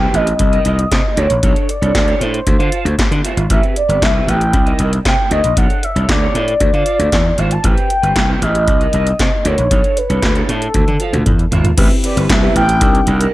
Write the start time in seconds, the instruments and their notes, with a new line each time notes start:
Already playing: soft synth lead G5
0.00 clean electric guitar C4 G4 B4
0.13 slap bass A1, clean electric guitar C4 G4 B4, soft synth lead D#5, closed hi-hat
0.27 muted clean electric guitar stroke, closed hi-hat
0.39 slap bass C2, muted clean electric guitar stroke, kick, closed hi-hat
0.52 clean electric guitar D#4 A#4 D#5, closed hi-hat
0.65 slap bass C2, clean electric guitar D#4 A#4 D#5, closed hi-hat
0.78 muted clean electric guitar stroke, closed hi-hat
0.92 slap bass C3, kick, snare, clap, closed hi-hat
1.04 muted clean electric guitar stroke
1.17 slap bass D2, clean electric guitar D#4 A#4 D5, soft synth lead C#5, closed hi-hat
1.30 slap bass A#1, muted clean electric guitar stroke, closed hi-hat
1.43 slap bass B1, clean electric guitar D4 A4 C#5, soft synth lead C#5, kick, closed hi-hat
1.56 closed hi-hat
1.63 soft synth lead C#5
1.69 soft synth lead D5, muted clean electric guitar stroke, closed hi-hat
1.82 slap bass C2, clean electric guitar D4 A4 C#5, closed hi-hat
1.95 slap bass D2, muted clean electric guitar stroke, kick, snare, clap, closed hi-hat
2.07 clean electric guitar D4 A4 C#5, closed hi-hat
2.20 slap bass A2, clean electric guitar D4 A4 C#5, soft synth lead C5, closed hi-hat
2.33 muted clean electric guitar stroke, closed hi-hat
2.46 slap bass D2, muted clean electric guitar stroke, kick, closed hi-hat
2.59 slap bass D3, clean electric guitar F4 C5 F5, closed hi-hat
2.72 clean electric guitar F4 C5 F5, closed hi-hat
2.85 slap bass D2, muted clean electric guitar stroke, closed hi-hat
2.99 kick, snare, clap, closed hi-hat
3.11 slap bass D3, muted clean electric guitar stroke, closed hi-hat
3.24 clean electric guitar F4 C5 E5, closed hi-hat
3.37 slap bass G#1, muted clean electric guitar stroke, closed hi-hat
3.50 slap bass A1, clean electric guitar C4 G4 B4, soft synth lead E5, kick, closed hi-hat
3.63 closed hi-hat
3.76 soft synth lead D5, muted clean electric guitar stroke, closed hi-hat
3.88 slap bass G1, clean electric guitar C4 G4 B4, closed hi-hat
4.02 slap bass C2, soft synth lead E5, muted clean electric guitar stroke, kick, snare, clap, closed hi-hat
4.14 clean electric guitar C4 G4 B4
4.27 slap bass A1, clean electric guitar C4 G4 B4, soft synth lead G5, closed hi-hat
4.41 muted clean electric guitar stroke, closed hi-hat
4.53 slap bass C2, muted clean electric guitar stroke, kick, closed hi-hat
4.66 clean electric guitar D#4 A#4 D#5, closed hi-hat
4.79 slap bass C2, clean electric guitar D#4 A#4 D#5, closed hi-hat
4.92 muted clean electric guitar stroke, closed hi-hat
5.05 slap bass C3, soft synth lead G5, kick, snare, clap, closed hi-hat
5.18 muted clean electric guitar stroke
5.30 slap bass D2, clean electric guitar D#4 A#4 D5, soft synth lead D#5, closed hi-hat
5.44 slap bass A#1, muted clean electric guitar stroke, closed hi-hat
5.56 slap bass B1, clean electric guitar D4 A4 C#5, soft synth lead F#5, kick, closed hi-hat
5.70 closed hi-hat
5.83 soft synth lead E5, muted clean electric guitar stroke, closed hi-hat
5.96 slap bass C2, clean electric guitar D4 A4 C#5, closed hi-hat
6.09 slap bass D2, soft synth lead D5, muted clean electric guitar stroke, kick, snare, clap, closed hi-hat
6.21 clean electric guitar D4 A4 C#5
6.34 slap bass A2, clean electric guitar D4 A4 C#5, closed hi-hat
6.47 muted clean electric guitar stroke, closed hi-hat
6.60 slap bass D2, muted clean electric guitar stroke, kick, closed hi-hat
6.73 slap bass D3, clean electric guitar F4 C5 F5, closed hi-hat
6.86 clean electric guitar F4 C5 F5, closed hi-hat
6.99 slap bass D2, muted clean electric guitar stroke, closed hi-hat
7.12 slap bass E2, kick, snare, clap, closed hi-hat
7.25 muted clean electric guitar stroke
7.37 slap bass G#1, clean electric guitar F4 C5 E5, soft synth lead F5, closed hi-hat
7.51 soft synth lead A5, muted clean electric guitar stroke, closed hi-hat
7.63 slap bass A1, clean electric guitar C4 G4 B4, soft synth lead G5, kick, closed hi-hat
7.78 closed hi-hat
7.90 muted clean electric guitar stroke, closed hi-hat
8.02 slap bass G1, clean electric guitar C4 G4 B4, closed hi-hat
8.16 slap bass C2, muted clean electric guitar stroke, kick, snare, clap, closed hi-hat
8.29 clean electric guitar C4 G4 B4
8.42 slap bass A1, clean electric guitar C4 G4 B4, soft synth lead D#5, closed hi-hat
8.55 muted clean electric guitar stroke, closed hi-hat
8.67 slap bass C2, muted clean electric guitar stroke, kick, closed hi-hat
8.80 clean electric guitar D#4 A#4 D#5, closed hi-hat
8.93 slap bass C2, clean electric guitar D#4 A#4 D#5, closed hi-hat
9.06 muted clean electric guitar stroke, closed hi-hat
9.19 slap bass C3, kick, snare, clap, closed hi-hat
9.32 muted clean electric guitar stroke
9.45 slap bass D2, clean electric guitar D#4 A#4 D5, soft synth lead C#5, closed hi-hat
9.58 slap bass A#1, muted clean electric guitar stroke, closed hi-hat
9.70 slap bass B1, clean electric guitar D4 A4 C#5, kick, closed hi-hat
9.84 closed hi-hat
9.97 soft synth lead B4, muted clean electric guitar stroke, closed hi-hat
10.09 slap bass C2, clean electric guitar D4 A4 C#5, closed hi-hat
10.23 slap bass D2, kick, snare, clap, closed hi-hat
10.35 clean electric guitar D4 A4 C#5, closed hi-hat
10.48 slap bass A2, clean electric guitar D4 A4 C#5, soft synth lead A4, closed hi-hat
10.61 muted clean electric guitar stroke, closed hi-hat
10.74 slap bass D2, kick, closed hi-hat, high tom
10.87 slap bass D3, muted clean electric guitar stroke, closed hi-hat, high tom
11.00 clean electric guitar F4 C5 F5, closed hi-hat
11.13 slap bass D2, muted clean electric guitar stroke, closed hi-hat, mid tom
11.26 slap bass E2, kick, closed hi-hat, mid tom
11.39 muted clean electric guitar stroke, closed hi-hat
11.51 slap bass G#1, clean electric guitar F4 C5 E5, closed hi-hat, floor tom
11.64 muted clean electric guitar stroke, closed hi-hat, floor tom
11.77 slap bass A1, clean electric guitar C4 G4 B4, fm electric piano C4 E4 G4 B4, soft synth lead E5, kick, closed hi-hat, crash
11.90 muted clean electric guitar stroke, closed hi-hat
12.03 clean electric guitar C4 G4 B4, soft synth lead D5, closed hi-hat
12.16 slap bass G1, fm electric piano C4 E4 G4 B4, clean electric guitar C4 G4 B4, closed hi-hat
12.29 slap bass C2, soft synth lead E5, muted clean electric guitar stroke, kick, snare, clap, closed hi-hat
12.42 fm electric piano B3 E4 G4 B4, clean electric guitar C4 G4 B4
12.48 fm electric piano C4
12.55 slap bass A1, soft synth lead G5, muted clean electric guitar stroke, closed hi-hat
12.68 muted clean electric guitar stroke, closed hi-hat
12.81 slap bass C2, fm electric piano D4 D#4 G4 A#4, muted clean electric guitar stroke, kick, closed hi-hat
12.94 muted clean electric guitar stroke, closed hi-hat
13.07 slap bass C2, clean electric guitar D#4 A#4 D5, closed hi-hat
13.20 clean electric guitar D#4 A#4 D5, closed hi-hat